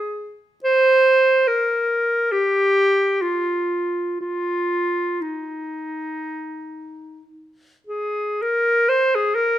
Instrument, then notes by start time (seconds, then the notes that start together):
clarinet
Already playing: G#4
0.64 C5
1.48 A#4
2.32 G4
3.22 F4
4.21 F4
5.21 D#4
7.87 G#4
8.42 A#4
8.89 C5
9.15 G#4
9.35 A#4